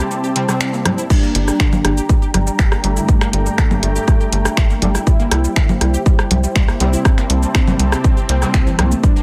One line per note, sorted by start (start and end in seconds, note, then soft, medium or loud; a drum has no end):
0.00 0.33 C3 medium
0.00 0.33 G3 medium
0.00 0.33 C4 medium
0.00 1.01 C4 loud
0.00 1.06 E4 medium
0.00 5.03 G4 medium
0.00 1.06 C5 medium
0.00 1.08 A5 medium
0.11 0.17 G3 medium
0.11 shaker medium
0.24 0.27 G4 medium
0.24 shaker soft
0.36 0.44 C3 loud
0.36 0.45 G3 medium
0.36 0.44 G3 medium
0.36 0.45 C4 loud
0.36 closed hi-hat loud
0.49 1.09 C3 medium
0.49 0.54 G3 medium
0.49 1.09 G3 medium
0.49 1.09 C4 loud
0.49 cross-stick medium
0.49 shaker medium
0.60 0.64 G3 loud
0.60 finger snap loud
0.60 shaker medium
0.73 0.79 A#3 medium
0.73 shaker soft
0.85 0.94 G3 medium
0.85 cross-stick medium
0.85 closed hi-hat medium
0.85 low conga medium
0.98 1.07 E4 medium
0.98 shaker medium
1.10 1.16 G3 medium
1.10 5.03 D4 medium
1.10 2.00 D4 loud
1.10 7.01 G5 medium
1.10 5.03 A#5 medium
1.10 kick loud
1.10 crash medium
1.10 shaker medium
1.23 1.29 A#3 loud
1.23 shaker soft
1.35 1.51 G1 medium
1.35 1.44 G3 medium
1.35 closed hi-hat loud
1.48 1.53 G3 medium
1.48 cross-stick medium
1.48 shaker medium
1.60 1.66 D3 medium
1.60 finger snap loud
1.60 kick loud
1.60 shaker medium
1.73 1.78 A#3 medium
1.73 low conga medium
1.73 shaker soft
1.84 2.00 G1 medium
1.84 1.94 G3 medium
1.84 cross-stick medium
1.84 closed hi-hat medium
1.97 2.03 G4 medium
1.97 shaker medium
2.09 2.15 G3 medium
2.09 kick loud
2.09 shaker medium
2.22 2.26 G4 medium
2.22 shaker soft
2.34 2.50 G1 medium
2.34 2.43 G3 medium
2.34 cross-stick soft
2.34 closed hi-hat loud
2.34 low conga medium
2.47 2.53 G3 medium
2.47 shaker medium
2.59 2.75 G1 medium
2.59 2.63 G3 loud
2.59 finger snap loud
2.59 kick loud
2.59 shaker medium
2.72 2.77 A#3 medium
2.72 cross-stick medium
2.72 shaker soft
2.84 2.99 G1 loud
2.84 3.68 G2 loud
2.84 3.68 D3 medium
2.84 3.68 G3 loud
2.84 2.93 G3 medium
2.84 4.97 A3 loud
2.84 closed hi-hat medium
2.97 3.05 E4 medium
2.97 shaker medium
3.08 3.15 G3 medium
3.08 kick loud
3.08 shaker medium
3.21 3.27 A#3 loud
3.21 finger snap soft
3.21 cross-stick medium
3.21 shaker soft
3.33 3.49 G1 medium
3.33 3.42 G3 medium
3.33 closed hi-hat loud
3.46 3.52 G3 medium
3.46 shaker medium
3.58 3.64 D3 medium
3.58 finger snap loud
3.58 kick loud
3.58 cross-stick medium
3.58 shaker medium
3.71 4.67 G2 medium
3.71 4.67 D3 medium
3.71 4.67 G3 medium
3.71 3.77 A#3 medium
3.71 low conga medium
3.71 shaker soft
3.83 3.99 G1 medium
3.83 3.92 G3 medium
3.83 closed hi-hat loud
3.96 4.01 G4 medium
3.96 shaker medium
4.08 4.14 G3 medium
4.08 kick loud
4.08 cross-stick soft
4.08 shaker medium
4.21 4.24 G4 medium
4.21 shaker soft
4.32 4.48 G1 medium
4.32 4.42 G3 medium
4.32 closed hi-hat loud
4.45 4.51 G3 medium
4.45 cross-stick medium
4.45 shaker medium
4.57 4.73 G1 medium
4.57 4.61 G3 medium
4.57 finger snap loud
4.57 kick loud
4.57 shaker medium
4.70 4.76 A#3 medium
4.70 shaker soft
4.82 4.98 G1 loud
4.82 4.91 G2 medium
4.82 4.91 D3 medium
4.82 4.91 G3 medium
4.82 4.91 G3 loud
4.82 closed hi-hat loud
4.82 low conga medium
4.95 5.03 E4 medium
4.95 cross-stick medium
4.95 shaker medium
5.07 5.13 G3 medium
5.07 8.99 E4 medium
5.07 5.96 E4 loud
5.07 9.23 G4 medium
5.07 9.00 C5 medium
5.07 kick loud
5.07 shaker medium
5.20 5.25 A#3 loud
5.20 shaker soft
5.31 5.47 C2 loud
5.31 5.41 G3 medium
5.31 cross-stick medium
5.31 closed hi-hat loud
5.44 5.50 G3 medium
5.44 shaker medium
5.56 5.62 D3 medium
5.56 finger snap loud
5.56 kick loud
5.56 shaker medium
5.69 5.75 A#3 medium
5.69 low conga medium
5.69 shaker soft
5.81 5.97 C2 medium
5.81 5.90 G3 medium
5.81 cross-stick medium
5.81 closed hi-hat loud
5.94 6.00 G4 medium
5.94 shaker medium
6.06 6.12 G3 medium
6.06 kick loud
6.06 shaker medium
6.19 6.22 G4 medium
6.19 cross-stick medium
6.19 shaker soft
6.31 6.47 C2 loud
6.31 6.40 G3 medium
6.31 closed hi-hat loud
6.31 low conga medium
6.44 6.49 G3 medium
6.44 shaker medium
6.55 6.71 C2 medium
6.55 6.59 G3 loud
6.55 finger snap loud
6.55 kick loud
6.55 shaker medium
6.68 6.74 A#3 medium
6.68 cross-stick medium
6.68 shaker soft
6.80 6.96 C2 loud
6.80 7.65 C3 loud
6.80 6.89 G3 medium
6.80 7.65 G3 medium
6.80 8.94 C4 loud
6.80 7.65 C4 loud
6.80 closed hi-hat loud
6.93 7.02 E4 medium
6.93 shaker medium
7.05 7.11 G3 medium
7.05 9.02 A5 medium
7.05 kick loud
7.05 cross-stick medium
7.05 shaker medium
7.18 7.24 A#3 loud
7.18 finger snap soft
7.18 shaker soft
7.30 7.46 C2 medium
7.30 7.39 G3 medium
7.30 closed hi-hat loud
7.43 7.48 G3 medium
7.43 shaker medium
7.55 7.61 D3 medium
7.55 finger snap loud
7.55 kick loud
7.55 cross-stick medium
7.55 shaker medium
7.67 8.27 C3 medium
7.67 8.27 G3 medium
7.67 7.73 A#3 medium
7.67 8.27 C4 medium
7.67 low conga medium
7.67 shaker soft
7.79 7.95 C2 medium
7.79 7.89 G3 medium
7.79 closed hi-hat loud
7.92 7.98 G4 medium
7.92 cross-stick medium
7.92 shaker medium
8.04 8.10 G3 medium
8.04 kick loud
8.04 shaker medium
8.17 8.21 G4 medium
8.17 shaker soft
8.29 8.45 C2 medium
8.29 8.38 C3 loud
8.29 8.38 G3 medium
8.29 8.33 A#3 medium
8.29 8.38 C4 loud
8.29 closed hi-hat loud
8.42 9.02 C3 loud
8.42 8.48 G3 medium
8.42 9.02 G3 medium
8.42 9.02 C4 loud
8.42 cross-stick medium
8.42 shaker medium
8.54 8.70 C2 medium
8.54 8.60 G4 medium
8.54 finger snap loud
8.54 kick loud
8.54 shaker medium
8.67 8.72 E3 loud
8.67 shaker soft
8.79 8.94 C2 loud
8.79 8.85 A#3 medium
8.79 cross-stick medium
8.79 closed hi-hat loud
8.79 low conga medium
8.91 8.97 A3 medium
8.91 shaker medium
9.03 9.10 G3 medium
9.03 9.23 D4 medium
9.03 9.23 D4 loud
9.03 9.23 G5 medium
9.03 9.23 A#5 medium
9.03 kick loud
9.03 shaker medium
9.16 9.22 A#3 loud
9.16 shaker soft